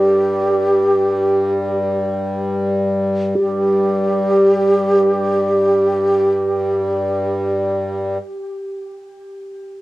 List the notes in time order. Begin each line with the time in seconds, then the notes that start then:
Already playing: G2 G3 G4
3.35 G2 G3 G4